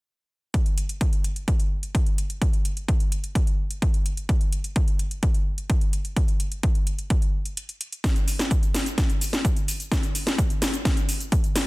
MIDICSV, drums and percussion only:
0, 0, Header, 1, 2, 480
1, 0, Start_track
1, 0, Tempo, 468750
1, 554, Time_signature, 4, 2, 24, 8
1, 11949, End_track
2, 0, Start_track
2, 0, Title_t, "Drums"
2, 554, Note_on_c, 9, 36, 119
2, 554, Note_on_c, 9, 42, 93
2, 656, Note_off_c, 9, 36, 0
2, 656, Note_off_c, 9, 42, 0
2, 674, Note_on_c, 9, 42, 38
2, 776, Note_off_c, 9, 42, 0
2, 794, Note_on_c, 9, 42, 62
2, 897, Note_off_c, 9, 42, 0
2, 914, Note_on_c, 9, 42, 40
2, 1016, Note_off_c, 9, 42, 0
2, 1033, Note_on_c, 9, 36, 110
2, 1033, Note_on_c, 9, 42, 94
2, 1136, Note_off_c, 9, 36, 0
2, 1136, Note_off_c, 9, 42, 0
2, 1154, Note_on_c, 9, 42, 38
2, 1256, Note_off_c, 9, 42, 0
2, 1274, Note_on_c, 9, 42, 72
2, 1376, Note_off_c, 9, 42, 0
2, 1394, Note_on_c, 9, 42, 38
2, 1497, Note_off_c, 9, 42, 0
2, 1513, Note_on_c, 9, 36, 109
2, 1514, Note_on_c, 9, 42, 87
2, 1616, Note_off_c, 9, 36, 0
2, 1616, Note_off_c, 9, 42, 0
2, 1633, Note_on_c, 9, 42, 40
2, 1736, Note_off_c, 9, 42, 0
2, 1874, Note_on_c, 9, 42, 37
2, 1976, Note_off_c, 9, 42, 0
2, 1994, Note_on_c, 9, 36, 117
2, 1994, Note_on_c, 9, 42, 97
2, 2096, Note_off_c, 9, 36, 0
2, 2096, Note_off_c, 9, 42, 0
2, 2114, Note_on_c, 9, 42, 37
2, 2216, Note_off_c, 9, 42, 0
2, 2234, Note_on_c, 9, 42, 68
2, 2337, Note_off_c, 9, 42, 0
2, 2354, Note_on_c, 9, 42, 39
2, 2457, Note_off_c, 9, 42, 0
2, 2474, Note_on_c, 9, 36, 123
2, 2474, Note_on_c, 9, 42, 90
2, 2576, Note_off_c, 9, 36, 0
2, 2577, Note_off_c, 9, 42, 0
2, 2595, Note_on_c, 9, 42, 37
2, 2697, Note_off_c, 9, 42, 0
2, 2714, Note_on_c, 9, 42, 62
2, 2817, Note_off_c, 9, 42, 0
2, 2835, Note_on_c, 9, 42, 38
2, 2937, Note_off_c, 9, 42, 0
2, 2954, Note_on_c, 9, 36, 113
2, 2955, Note_on_c, 9, 42, 89
2, 3056, Note_off_c, 9, 36, 0
2, 3057, Note_off_c, 9, 42, 0
2, 3074, Note_on_c, 9, 42, 35
2, 3177, Note_off_c, 9, 42, 0
2, 3195, Note_on_c, 9, 42, 70
2, 3297, Note_off_c, 9, 42, 0
2, 3315, Note_on_c, 9, 42, 37
2, 3417, Note_off_c, 9, 42, 0
2, 3434, Note_on_c, 9, 36, 111
2, 3435, Note_on_c, 9, 42, 94
2, 3536, Note_off_c, 9, 36, 0
2, 3537, Note_off_c, 9, 42, 0
2, 3555, Note_on_c, 9, 42, 39
2, 3657, Note_off_c, 9, 42, 0
2, 3794, Note_on_c, 9, 42, 38
2, 3897, Note_off_c, 9, 42, 0
2, 3914, Note_on_c, 9, 36, 124
2, 3914, Note_on_c, 9, 42, 94
2, 4016, Note_off_c, 9, 36, 0
2, 4016, Note_off_c, 9, 42, 0
2, 4034, Note_on_c, 9, 42, 37
2, 4137, Note_off_c, 9, 42, 0
2, 4154, Note_on_c, 9, 42, 64
2, 4256, Note_off_c, 9, 42, 0
2, 4274, Note_on_c, 9, 42, 37
2, 4376, Note_off_c, 9, 42, 0
2, 4394, Note_on_c, 9, 36, 122
2, 4394, Note_on_c, 9, 42, 88
2, 4496, Note_off_c, 9, 36, 0
2, 4496, Note_off_c, 9, 42, 0
2, 4513, Note_on_c, 9, 42, 37
2, 4616, Note_off_c, 9, 42, 0
2, 4633, Note_on_c, 9, 42, 63
2, 4736, Note_off_c, 9, 42, 0
2, 4753, Note_on_c, 9, 42, 38
2, 4856, Note_off_c, 9, 42, 0
2, 4873, Note_on_c, 9, 36, 116
2, 4873, Note_on_c, 9, 42, 88
2, 4975, Note_off_c, 9, 42, 0
2, 4976, Note_off_c, 9, 36, 0
2, 4993, Note_on_c, 9, 42, 38
2, 5096, Note_off_c, 9, 42, 0
2, 5114, Note_on_c, 9, 42, 66
2, 5216, Note_off_c, 9, 42, 0
2, 5234, Note_on_c, 9, 42, 36
2, 5336, Note_off_c, 9, 42, 0
2, 5353, Note_on_c, 9, 36, 120
2, 5353, Note_on_c, 9, 42, 88
2, 5455, Note_off_c, 9, 42, 0
2, 5456, Note_off_c, 9, 36, 0
2, 5473, Note_on_c, 9, 42, 39
2, 5576, Note_off_c, 9, 42, 0
2, 5713, Note_on_c, 9, 42, 37
2, 5815, Note_off_c, 9, 42, 0
2, 5833, Note_on_c, 9, 36, 127
2, 5833, Note_on_c, 9, 42, 94
2, 5936, Note_off_c, 9, 36, 0
2, 5936, Note_off_c, 9, 42, 0
2, 5953, Note_on_c, 9, 42, 35
2, 6055, Note_off_c, 9, 42, 0
2, 6073, Note_on_c, 9, 42, 62
2, 6175, Note_off_c, 9, 42, 0
2, 6193, Note_on_c, 9, 42, 36
2, 6295, Note_off_c, 9, 42, 0
2, 6313, Note_on_c, 9, 36, 117
2, 6313, Note_on_c, 9, 42, 85
2, 6415, Note_off_c, 9, 36, 0
2, 6415, Note_off_c, 9, 42, 0
2, 6432, Note_on_c, 9, 42, 35
2, 6535, Note_off_c, 9, 42, 0
2, 6552, Note_on_c, 9, 42, 61
2, 6654, Note_off_c, 9, 42, 0
2, 6672, Note_on_c, 9, 42, 39
2, 6775, Note_off_c, 9, 42, 0
2, 6792, Note_on_c, 9, 42, 86
2, 6793, Note_on_c, 9, 36, 122
2, 6895, Note_off_c, 9, 42, 0
2, 6896, Note_off_c, 9, 36, 0
2, 6913, Note_on_c, 9, 42, 35
2, 7016, Note_off_c, 9, 42, 0
2, 7033, Note_on_c, 9, 42, 63
2, 7135, Note_off_c, 9, 42, 0
2, 7153, Note_on_c, 9, 42, 37
2, 7255, Note_off_c, 9, 42, 0
2, 7273, Note_on_c, 9, 36, 121
2, 7273, Note_on_c, 9, 42, 87
2, 7375, Note_off_c, 9, 42, 0
2, 7376, Note_off_c, 9, 36, 0
2, 7393, Note_on_c, 9, 42, 38
2, 7496, Note_off_c, 9, 42, 0
2, 7633, Note_on_c, 9, 42, 34
2, 7736, Note_off_c, 9, 42, 0
2, 7753, Note_on_c, 9, 42, 85
2, 7856, Note_off_c, 9, 42, 0
2, 7873, Note_on_c, 9, 42, 34
2, 7976, Note_off_c, 9, 42, 0
2, 7994, Note_on_c, 9, 42, 63
2, 8096, Note_off_c, 9, 42, 0
2, 8114, Note_on_c, 9, 42, 37
2, 8217, Note_off_c, 9, 42, 0
2, 8233, Note_on_c, 9, 36, 116
2, 8234, Note_on_c, 9, 38, 51
2, 8234, Note_on_c, 9, 42, 99
2, 8239, Note_on_c, 9, 82, 45
2, 8336, Note_off_c, 9, 36, 0
2, 8337, Note_off_c, 9, 38, 0
2, 8337, Note_off_c, 9, 42, 0
2, 8341, Note_off_c, 9, 82, 0
2, 8355, Note_on_c, 9, 42, 39
2, 8359, Note_on_c, 9, 82, 21
2, 8457, Note_off_c, 9, 42, 0
2, 8462, Note_off_c, 9, 82, 0
2, 8475, Note_on_c, 9, 46, 103
2, 8479, Note_on_c, 9, 82, 78
2, 8577, Note_off_c, 9, 46, 0
2, 8582, Note_off_c, 9, 82, 0
2, 8595, Note_on_c, 9, 38, 46
2, 8595, Note_on_c, 9, 42, 42
2, 8600, Note_on_c, 9, 82, 34
2, 8697, Note_off_c, 9, 38, 0
2, 8697, Note_off_c, 9, 42, 0
2, 8702, Note_off_c, 9, 82, 0
2, 8713, Note_on_c, 9, 36, 118
2, 8715, Note_on_c, 9, 42, 99
2, 8719, Note_on_c, 9, 82, 45
2, 8816, Note_off_c, 9, 36, 0
2, 8817, Note_off_c, 9, 42, 0
2, 8822, Note_off_c, 9, 82, 0
2, 8835, Note_on_c, 9, 42, 38
2, 8840, Note_on_c, 9, 82, 21
2, 8937, Note_off_c, 9, 42, 0
2, 8942, Note_off_c, 9, 82, 0
2, 8955, Note_on_c, 9, 38, 52
2, 8955, Note_on_c, 9, 46, 111
2, 8959, Note_on_c, 9, 82, 85
2, 9057, Note_off_c, 9, 38, 0
2, 9057, Note_off_c, 9, 46, 0
2, 9062, Note_off_c, 9, 82, 0
2, 9074, Note_on_c, 9, 42, 41
2, 9079, Note_on_c, 9, 82, 33
2, 9177, Note_off_c, 9, 42, 0
2, 9181, Note_off_c, 9, 82, 0
2, 9193, Note_on_c, 9, 36, 117
2, 9194, Note_on_c, 9, 38, 48
2, 9194, Note_on_c, 9, 42, 95
2, 9198, Note_on_c, 9, 82, 43
2, 9296, Note_off_c, 9, 36, 0
2, 9296, Note_off_c, 9, 38, 0
2, 9296, Note_off_c, 9, 42, 0
2, 9301, Note_off_c, 9, 82, 0
2, 9314, Note_on_c, 9, 42, 42
2, 9319, Note_on_c, 9, 82, 22
2, 9416, Note_off_c, 9, 42, 0
2, 9421, Note_off_c, 9, 82, 0
2, 9434, Note_on_c, 9, 46, 105
2, 9439, Note_on_c, 9, 82, 80
2, 9537, Note_off_c, 9, 46, 0
2, 9541, Note_off_c, 9, 82, 0
2, 9554, Note_on_c, 9, 38, 44
2, 9554, Note_on_c, 9, 42, 41
2, 9559, Note_on_c, 9, 82, 32
2, 9657, Note_off_c, 9, 38, 0
2, 9657, Note_off_c, 9, 42, 0
2, 9661, Note_off_c, 9, 82, 0
2, 9673, Note_on_c, 9, 36, 126
2, 9674, Note_on_c, 9, 42, 95
2, 9679, Note_on_c, 9, 82, 46
2, 9776, Note_off_c, 9, 36, 0
2, 9777, Note_off_c, 9, 42, 0
2, 9781, Note_off_c, 9, 82, 0
2, 9794, Note_on_c, 9, 42, 39
2, 9799, Note_on_c, 9, 82, 22
2, 9896, Note_off_c, 9, 42, 0
2, 9901, Note_off_c, 9, 82, 0
2, 9914, Note_on_c, 9, 46, 112
2, 9919, Note_on_c, 9, 82, 80
2, 10017, Note_off_c, 9, 46, 0
2, 10021, Note_off_c, 9, 82, 0
2, 10034, Note_on_c, 9, 42, 40
2, 10039, Note_on_c, 9, 82, 31
2, 10136, Note_off_c, 9, 42, 0
2, 10141, Note_off_c, 9, 82, 0
2, 10153, Note_on_c, 9, 36, 119
2, 10154, Note_on_c, 9, 38, 51
2, 10154, Note_on_c, 9, 42, 91
2, 10159, Note_on_c, 9, 82, 44
2, 10256, Note_off_c, 9, 36, 0
2, 10257, Note_off_c, 9, 38, 0
2, 10257, Note_off_c, 9, 42, 0
2, 10261, Note_off_c, 9, 82, 0
2, 10274, Note_on_c, 9, 42, 37
2, 10279, Note_on_c, 9, 82, 20
2, 10376, Note_off_c, 9, 42, 0
2, 10381, Note_off_c, 9, 82, 0
2, 10393, Note_on_c, 9, 46, 105
2, 10398, Note_on_c, 9, 82, 71
2, 10496, Note_off_c, 9, 46, 0
2, 10501, Note_off_c, 9, 82, 0
2, 10514, Note_on_c, 9, 38, 48
2, 10514, Note_on_c, 9, 42, 41
2, 10519, Note_on_c, 9, 82, 32
2, 10616, Note_off_c, 9, 38, 0
2, 10616, Note_off_c, 9, 42, 0
2, 10621, Note_off_c, 9, 82, 0
2, 10633, Note_on_c, 9, 36, 126
2, 10634, Note_on_c, 9, 42, 97
2, 10639, Note_on_c, 9, 82, 44
2, 10736, Note_off_c, 9, 36, 0
2, 10737, Note_off_c, 9, 42, 0
2, 10741, Note_off_c, 9, 82, 0
2, 10754, Note_on_c, 9, 42, 39
2, 10758, Note_on_c, 9, 82, 22
2, 10856, Note_off_c, 9, 42, 0
2, 10861, Note_off_c, 9, 82, 0
2, 10873, Note_on_c, 9, 38, 60
2, 10873, Note_on_c, 9, 46, 112
2, 10878, Note_on_c, 9, 82, 79
2, 10976, Note_off_c, 9, 38, 0
2, 10976, Note_off_c, 9, 46, 0
2, 10981, Note_off_c, 9, 82, 0
2, 10993, Note_on_c, 9, 42, 39
2, 10998, Note_on_c, 9, 82, 32
2, 11095, Note_off_c, 9, 42, 0
2, 11100, Note_off_c, 9, 82, 0
2, 11113, Note_on_c, 9, 36, 123
2, 11113, Note_on_c, 9, 38, 54
2, 11113, Note_on_c, 9, 42, 87
2, 11118, Note_on_c, 9, 82, 43
2, 11215, Note_off_c, 9, 36, 0
2, 11215, Note_off_c, 9, 38, 0
2, 11215, Note_off_c, 9, 42, 0
2, 11220, Note_off_c, 9, 82, 0
2, 11233, Note_on_c, 9, 42, 41
2, 11238, Note_on_c, 9, 82, 22
2, 11336, Note_off_c, 9, 42, 0
2, 11340, Note_off_c, 9, 82, 0
2, 11353, Note_on_c, 9, 46, 108
2, 11358, Note_on_c, 9, 82, 72
2, 11455, Note_off_c, 9, 46, 0
2, 11460, Note_off_c, 9, 82, 0
2, 11473, Note_on_c, 9, 42, 40
2, 11478, Note_on_c, 9, 82, 31
2, 11576, Note_off_c, 9, 42, 0
2, 11580, Note_off_c, 9, 82, 0
2, 11592, Note_on_c, 9, 42, 100
2, 11593, Note_on_c, 9, 36, 121
2, 11597, Note_on_c, 9, 82, 47
2, 11695, Note_off_c, 9, 36, 0
2, 11695, Note_off_c, 9, 42, 0
2, 11699, Note_off_c, 9, 82, 0
2, 11713, Note_on_c, 9, 42, 36
2, 11717, Note_on_c, 9, 82, 20
2, 11815, Note_off_c, 9, 42, 0
2, 11820, Note_off_c, 9, 82, 0
2, 11833, Note_on_c, 9, 38, 57
2, 11833, Note_on_c, 9, 46, 109
2, 11838, Note_on_c, 9, 82, 77
2, 11935, Note_off_c, 9, 38, 0
2, 11935, Note_off_c, 9, 46, 0
2, 11940, Note_off_c, 9, 82, 0
2, 11949, End_track
0, 0, End_of_file